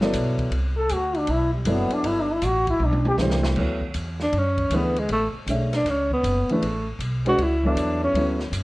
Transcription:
Already playing: G1
0.01 F#3 B3 E4 A4 D5, snare
0.13 B1, hi-hat pedal, ride
0.38 kick, ride
0.51 C2, ride
0.77 A4
0.89 D2, hi-hat pedal, ride
0.93 F#4
1.14 D4, ride
1.27 B1 E4, ride
1.54 G3
1.65 F#1 F#3 B3 E4 A4 D5, hi-hat pedal, ride
1.90 D4, muted upright bass stroke, ride
2.03 G1, ride
2.07 E4
2.21 D4
2.33 E4
2.42 A1 F#4, hi-hat pedal, ride
2.67 E4, kick, ride
2.80 B1, high tom
2.85 D4
2.93 high tom
3.05 G4, high tom
3.18 C2 E3 A3 D4 G4 C5, snare, hi-hat pedal
3.30 snare
3.44 snare
3.56 D2 F#3 B3 E4 A4 C#5, kick, crash
3.82 kick
3.94 E2, hi-hat pedal, ride
4.20 D4, snare
4.33 F#2, ride
4.38 C#4
4.58 kick, ride
4.70 D2 E3 A3 D4 G#4 B4, hi-hat pedal, ride
4.76 B3
4.97 G#3, ride
5.09 A1 A3, ride
5.34 muted upright bass stroke
5.47 B1 A3 D4 G#4 C#5 E5, hi-hat pedal, ride
5.73 D4, snare, ride
5.84 C#2, snare, ride
5.90 C#4
6.11 B3, kick
6.23 F#1, hi-hat pedal, ride
6.49 E3 A3 D4 G#4 B4, muted upright bass stroke, ride
6.62 A1, ride
6.99 B1, hi-hat pedal, ride
7.25 G#3 C#4 F#4 B4 D5, ride
7.38 C#2, ride
7.43 E4
7.63 F#3 B3 D4 E4 A4 E5, kick
7.75 E2, hi-hat pedal, ride
8.04 C#4
8.14 D2 F#3 B3 E4 A4 C#5, ride
8.40 snare
8.52 F#2, hi-hat pedal, ride

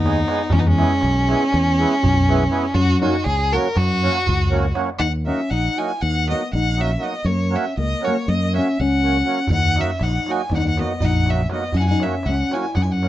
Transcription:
Already playing: D#2 B3 D#4
0.05 G#3 B3 D#4 G#4, darbuka tek
0.27 G#3 B3 D#4 G#4, darbuka tek
0.50 E2 G#3 C#4, darbuka dum
0.59 B3 D#4
0.66 G#3 C#4
0.78 G#3 B3 E4 G#4, darbuka tek
1.01 B1, darbuka tek
1.15 darbuka tek
1.29 G#3 B3 E4 G#4, darbuka tek
1.52 E2, darbuka tek
1.66 darbuka tek
1.79 G#3 B3 E4 G#4, darbuka tek
1.92 darbuka tek
2.03 B1, darbuka dum
2.29 G#3 B3 E4 G#4, darbuka tek
2.50 G#3 B3 E4 G#4, darbuka tek
2.75 F#2 C#4 F#4, darbuka dum
2.89 darbuka tek
3.01 F#3 A#3 C#4 D#4 F#4, darbuka tek
3.14 darbuka tek
3.24 C#2 C#4 G#4, darbuka tek
3.39 darbuka tek
3.52 F#3 A#3 C#4 F#4 A#4, darbuka tek
3.65 darbuka tek
3.76 F#2 C#4 F#4, darbuka tek, darbuka dum
3.90 darbuka tek
4.03 F#3 A#3 C#4 F#4, darbuka tek
4.15 darbuka tek
4.27 C#2, darbuka dum
4.40 darbuka tek
4.50 F#3 A#3 C#4 F#4, darbuka tek
4.65 darbuka tek
4.74 F#3 A#3 C#4 F#4, darbuka tek
4.99 D#2 D#4 F#5
5.25 F#3 A#3 C#4 D#4 F#4 E5
5.50 A#1 D#4 F#5
5.76 F#3 A#3 D#4 E4 F#4 G#5
6.01 D#2 D#4 F#5
6.26 F#3 A#3 D#4 F#4 D#5
6.31 B3
6.53 A#1 D#4 F#5
6.76 F#3 A#3 D#4 F#4
6.80 C#4 E5
6.99 F#3 A#3 D#4 F#4
7.04 B3 D#5
7.25 F#2 A#3 C#5
7.50 F#3 A#3 C#4 F#4
7.55 C#4 E5
7.77 C#2 A#3 D#5
8.01 F#3 A#3 C#4 F#4 C#5
8.07 A#3
8.28 F#2 A#3 D#5
8.53 F#3 A#3 C#4 F#4 E5
8.58 C#4
8.80 C#2 C#4 F#5
9.03 F#3 A#3 C#4 F#4
9.25 F#3 A#3 C#4 F#4
9.47 D#2 F#5, darbuka dum
9.52 D#4
9.76 F#3 A#3 C#4 D#4 F#4, darbuka tek
9.81 E5
9.99 A#1 D#4 F#5, darbuka tek
10.14 darbuka tek
10.26 F#3 A#3 D#4 E4 F#4, darbuka tek
10.31 G#5
10.39 darbuka tek
10.50 D#2 D#4, darbuka tek, darbuka dum
10.55 D#4 F#5
10.64 D#4, darbuka tek
10.69 F#5
10.77 F#3 A#3 B3 D#4 F#4 D#5, darbuka tek
11.00 A#1 D#4, darbuka dum
11.05 F#5
11.14 darbuka tek
11.26 F#3 A#3 C#4 D#4 F#4 E5, darbuka tek
11.49 F#3 A#3 B3 D#4 F#4 D#5, darbuka tek
11.72 F#2 C#4, darbuka dum
11.77 F#5 G#5
11.81 E4
11.87 F#5, darbuka tek
11.91 D#4
12.00 F#3 A#3 C#4 F#4 E5, darbuka tek
12.05 C#4
12.12 darbuka tek
12.23 C#2 F#5, darbuka tek
12.29 C#4
12.38 darbuka tek
12.50 F#3 A#3 C#4 F#4 G#5, darbuka tek
12.55 E4
12.64 darbuka tek
12.75 F#2 C#4 F#5, darbuka tek, darbuka dum
12.82 E4 G#5
12.90 C#4 F#5, darbuka tek
13.01 F#3 A#3 C#4 F#4, darbuka tek

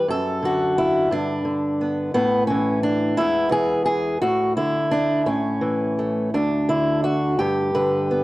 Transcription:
Already playing: G4
0.08 F#2 A4
0.42 D3 F#4
0.78 E4
1.11 G2 D4
1.45 D3
1.81 B3
2.14 A2 B3
2.47 E3 C#4
2.83 D4
3.17 E2 E3 G#3 B3 E4
3.51 E3 G#4
3.85 G#4
4.21 A2 F#4
4.57 D3 E4
4.91 D4
5.26 A2 C#4
5.61 E3
5.99 A3
6.34 D2 D4
6.69 D3 E4
7.04 F#4
7.39 G2 G4
7.75 D3 B4
8.11 B3

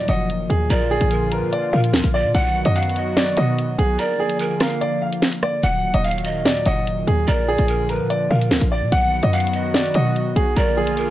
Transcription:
Already playing: A#2 D#3 F3 F#3
0.08 F#1 D#5 F#5, closed hi-hat
0.30 closed hi-hat
0.50 D#2 G#4, closed hi-hat
0.70 A#1 D3 F3 F4 A#4 D5, closed hi-hat
0.91 G#4
1.01 A#1, closed hi-hat
1.11 A#4, closed hi-hat
1.32 A#4 B4, closed hi-hat
1.42 A#2
1.53 D5, closed hi-hat
1.73 A#2 A#4 F5
1.84 closed hi-hat
1.94 D2, snare
2.04 A#1, closed hi-hat
2.14 D5
2.24 A#2
2.35 B1 D#3 F#3 B3 F#4 F#5, closed hi-hat
2.65 F#2 D#5, closed hi-hat
2.76 F5 F#5, closed hi-hat
2.83 closed hi-hat
2.89 closed hi-hat
2.96 D#5, closed hi-hat
3.17 D5, snare
3.37 B2 D#5 F#5, closed hi-hat
3.59 closed hi-hat
3.78 B1 G#4, closed hi-hat
3.99 D3 F3 A#3 A#4 D5, closed hi-hat
4.20 G#4
4.30 closed hi-hat
4.39 A#4, closed hi-hat
4.60 A#4 F5, cross-stick, snare, closed hi-hat
4.81 D5, closed hi-hat
5.02 F5
5.13 closed hi-hat
5.22 snare
5.33 closed hi-hat
5.43 D5, cross-stick
5.63 D#1 A#2 D#3 F#3 F#5, closed hi-hat
5.84 D1
5.94 D#1 D#5, closed hi-hat
6.04 F5, closed hi-hat
6.11 closed hi-hat
6.18 closed hi-hat
6.25 D#5, closed hi-hat
6.46 D#2 D5, snare
6.66 F#1 D#5 F#5, closed hi-hat
6.87 closed hi-hat
7.07 D#2 G#4, closed hi-hat
7.28 A#1 D3 F3 A#4 D5, closed hi-hat
7.48 G#4
7.58 A#1, closed hi-hat
7.68 A#4, closed hi-hat
7.89 A#4 B4, closed hi-hat
8.00 A#2
8.10 D5, closed hi-hat
8.30 A#2 A#4 F5
8.42 closed hi-hat
8.51 D2, snare
8.61 A#1, closed hi-hat
8.72 D5
8.82 A#2
8.92 B1 D#3 F#3 B3 F#4 F#5, closed hi-hat
9.23 F#2 D#5, closed hi-hat
9.33 F5 F#5, closed hi-hat
9.40 closed hi-hat
9.47 closed hi-hat
9.54 D#5, closed hi-hat
9.74 D5, snare
9.94 B2 D#5 F#5, closed hi-hat
10.16 closed hi-hat
10.36 B1 G#4, closed hi-hat
10.56 A#1 D3 F3 A#3 F4 A#4 D5, closed hi-hat
10.77 G#4
10.87 closed hi-hat
10.97 A#4, closed hi-hat

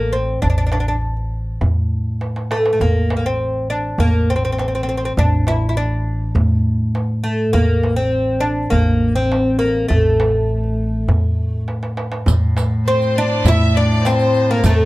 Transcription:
Already playing: A1 A#3
0.13 C4, darbuka ka
0.42 A1 D4, darbuka dum
0.50 D4
0.57 D4, darbuka ka
0.67 D4
0.72 D4, darbuka tek
0.80 D4
0.88 D4
1.01 darbuka ka
1.17 darbuka ka
1.61 A2, darbuka dum
2.21 darbuka tek
2.36 darbuka ka
2.51 A3, darbuka tek
2.66 darbuka ka
2.73 A3
2.80 A1 A#3, darbuka dum
3.10 darbuka tek
3.17 A#3
3.26 C4
3.70 D4
3.98 A1 A#3, darbuka dum
4.30 C4
4.36 C4
4.45 C4
4.52 C4
4.58 C4, darbuka tek
4.68 C4
4.75 C4
4.83 C4
4.89 C4
4.97 C4
5.05 C4
5.17 A1 D4, darbuka dum
5.47 E4, darbuka tek
5.69 E4
5.77 D4
6.35 A2, darbuka dum
6.95 darbuka tek
7.24 A3, darbuka ka
7.53 A1 A#3, darbuka dum
7.83 darbuka tek
7.96 C4
8.40 D4
8.70 A1 A#3, darbuka dum
9.15 C4
9.32 darbuka tek
9.59 A#3
9.88 A1 A3, darbuka dum
10.05 darbuka ka
10.20 darbuka tek
10.49 darbuka ka
10.64 darbuka ka
11.08 A2, darbuka dum
11.68 darbuka tek
11.83 darbuka ka
11.97 darbuka tek
12.12 darbuka ka
12.26 A2, riq, darbuka dum
12.42 darbuka ka
12.57 riq, darbuka tek
12.86 C4 C5
13.02 riq, darbuka ka
13.16 D4 D5
13.45 A2 E4 E5, riq, darbuka dum
13.75 D4 D5
14.04 C4 C5, riq, darbuka tek
14.19 riq, darbuka ka
14.35 riq, darbuka ka
14.50 A#3 A#4
14.64 A2 A3 A4, riq, darbuka dum
14.79 darbuka ka

